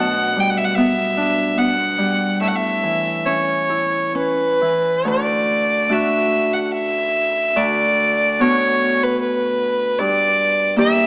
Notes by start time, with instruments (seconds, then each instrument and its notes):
Already playing: harp B2 A3 D4, fiddle F#5
0.36 harp G3, fiddle G5
0.49 fiddle F#5
0.57 fiddle E5
0.64 fiddle F#5
0.75 harp B3, fiddle E5
1.17 harp D4
1.57 harp B3, fiddle F#5
1.98 harp G3
2.41 harp A2, fiddle E5
2.48 fiddle F#5
2.55 fiddle E5
2.83 harp E3
3.25 harp C#4, fiddle C#5
3.70 harp E4
4.15 harp C#4, fiddle B4
4.62 harp E3
5.05 harp D2, fiddle D5
5.89 harp A3 D4 F#4, fiddle E5
6.53 fiddle F#5
6.62 fiddle F#5
6.71 fiddle E5
7.56 harp D2, fiddle D5
8.39 harp B3 D4 F#4, fiddle C#5
9.03 fiddle B4
9.21 fiddle B4
9.98 harp G2, fiddle D5
10.76 harp A#3 E4 G4, fiddle E5